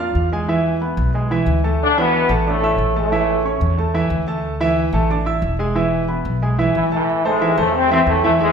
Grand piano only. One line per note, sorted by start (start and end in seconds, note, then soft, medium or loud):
0.00 0.26 F4 medium
0.00 0.26 F5 medium
0.00 0.26 F6 medium
0.32 0.46 G#3 medium
0.32 0.46 G#4 medium
0.32 0.46 G#5 medium
0.48 0.75 E3 medium
0.48 0.76 E4 medium
0.48 0.76 E5 medium
0.81 1.08 B3 medium
0.81 1.09 B4 medium
0.81 1.09 B5 medium
1.15 1.28 G#3 medium
1.15 1.28 G#4 medium
1.15 1.28 G#5 medium
1.31 1.58 E3 medium
1.31 1.58 E4 medium
1.31 1.58 E5 medium
1.64 1.91 A3 medium
1.64 1.91 A4 medium
1.64 1.91 A5 medium
1.98 2.24 E3 medium
1.98 2.24 E4 medium
1.98 2.24 E5 medium
2.30 2.43 A3 medium
2.30 2.44 A4 medium
2.30 2.44 A5 medium
2.47 2.60 D4 medium
2.47 2.60 D5 medium
2.47 2.60 D6 medium
2.63 2.90 E4 medium
2.63 2.90 E5 medium
2.63 2.90 E6 medium
2.96 3.09 A3 medium
2.96 3.09 A4 medium
2.96 3.10 A5 medium
3.12 3.39 E3 medium
3.12 3.39 E4 medium
3.12 3.39 E5 medium
3.45 3.72 C#4 medium
3.45 3.72 C#5 medium
3.45 3.72 C#6 medium
3.78 3.91 A3 medium
3.78 3.92 A4 medium
3.78 3.92 A5 medium
3.94 4.21 E3 medium
3.94 4.22 E4 medium
3.94 4.22 E5 medium
4.27 4.54 A3 medium
4.27 4.55 A4 medium
4.27 4.55 A5 medium
4.60 4.87 E3 medium
4.60 4.88 E4 medium
4.60 4.88 E5 loud
4.93 5.07 A3 medium
4.93 5.07 A4 medium
4.93 5.07 A5 medium
5.10 5.24 D4 medium
5.10 5.24 D5 medium
5.10 5.24 D6 medium
5.26 5.53 E4 medium
5.26 5.53 E5 medium
5.26 5.54 E6 medium
5.59 5.73 G#3 medium
5.59 5.73 G#4 medium
5.59 5.73 G#5 medium
5.75 6.03 E3 medium
5.75 6.03 E4 medium
5.75 6.03 E5 medium
6.08 6.36 B3 medium
6.08 6.36 B4 medium
6.08 6.36 B5 medium
6.42 6.56 G#3 medium
6.42 6.56 G#4 medium
6.42 6.56 G#5 medium
6.59 6.86 E3 medium
6.59 6.86 E4 medium
6.59 6.86 E5 medium
6.91 7.05 A3 medium
6.91 7.05 A4 medium
6.91 7.05 A5 medium
7.25 7.38 A3 medium
7.25 7.38 A4 medium
7.25 7.39 C5 medium
7.41 7.55 E3 medium
7.41 7.55 E4 medium
7.41 7.55 E5 medium
7.57 7.85 A3 medium
7.57 7.85 A4 medium
7.57 7.85 C5 medium
7.91 8.18 E3 medium
7.91 8.18 E4 medium
7.91 8.18 E5 medium
8.24 8.37 E3 medium
8.24 8.37 E4 medium
8.24 8.38 E5 medium
8.40 8.52 E3 medium
8.40 8.52 E4 medium
8.40 8.52 E5 medium